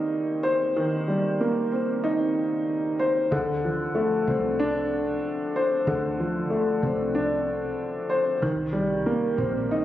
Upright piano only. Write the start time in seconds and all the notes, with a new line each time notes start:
Already playing: D#3 G3 A#3 C4 D#4
0.43 C5
0.77 D#3
1.08 G3
1.41 A#3
1.72 C4
2.04 D#4
3.00 C5
3.32 D3
3.65 F3
3.95 A3
4.29 C4
4.59 D4
5.56 C5
5.87 D3
6.20 F3
6.50 A3
6.84 C4
7.15 D4
8.10 C5
8.42 D#3
8.73 G3
9.06 A#3
9.38 C4
9.71 D#4